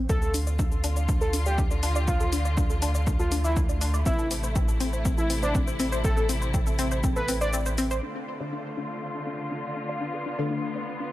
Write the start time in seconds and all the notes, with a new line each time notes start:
0.09 D2 D3 A3 D4 F4 A4, kick, shaker
0.22 A4, shaker
0.34 D4, open hi-hat, shaker
0.47 D5, shaker
0.59 D4, kick, shaker
0.72 A4, shaker
0.84 D4, open hi-hat, shaker
0.96 D5, shaker
1.09 D4, kick, shaker
1.21 A4, shaker
1.33 D4, open hi-hat, shaker
1.46 G4 D5, shaker
1.58 D4, kick, shaker
1.71 D5, shaker
1.83 D4, open hi-hat, shaker
1.96 D5, shaker
2.08 D4 F4, kick, shaker
2.20 A4, shaker
2.33 D4, open hi-hat, shaker
2.45 D5, shaker
2.57 D4, kick, shaker
2.70 A4, shaker
2.82 D4, open hi-hat, shaker
2.95 D5, shaker
3.07 D4, kick, shaker
3.19 F4 A4, shaker
3.32 D4, open hi-hat, shaker
3.44 E4 D5, shaker
3.56 D4, kick, shaker
3.69 D5, shaker
3.81 D4, open hi-hat, shaker
3.94 D5, shaker
4.06 A1 C3 C4 E4, kick, shaker
4.19 A4, shaker
4.31 C4, open hi-hat, shaker
4.43 C5, shaker
4.56 C4, kick, shaker
4.68 A4, shaker
4.80 C4, open hi-hat, shaker
4.93 C5, shaker
5.05 C4, kick, shaker
5.18 E4 A4, shaker
5.30 C4, open hi-hat, shaker
5.43 D4 C5, shaker
5.55 C4, kick, shaker
5.67 C5, shaker
5.80 C4, open hi-hat, shaker
5.92 C5, shaker
6.04 C4 A4, kick, shaker
6.17 A4, shaker
6.29 C4, open hi-hat, shaker
6.42 C5, shaker
6.54 C4, kick, shaker
6.67 A4, shaker
6.79 C4, open hi-hat, shaker
6.91 C5, shaker
7.03 C4, kick, shaker
7.16 A4 B4, shaker
7.28 C4, open hi-hat, shaker
7.41 C5 D5, shaker
7.53 C4, shaker
7.66 C5, shaker
7.78 C4, open hi-hat, shaker
7.91 C5, shaker
8.03 D3 A3 D4 F4
8.16 A4
8.28 D4
8.40 D3 A3 D4 D5
8.53 D4
8.65 A4
8.77 D4
8.90 D5
9.02 D4
9.15 A4
9.27 D4
9.39 D5
9.52 D4
9.64 D5
9.76 D4
9.89 D5
10.01 B3 D4
10.14 A4
10.26 D4
10.39 D3 A3 D4 D5
10.51 D4
10.63 A4
10.75 D4
10.88 D5
11.00 D4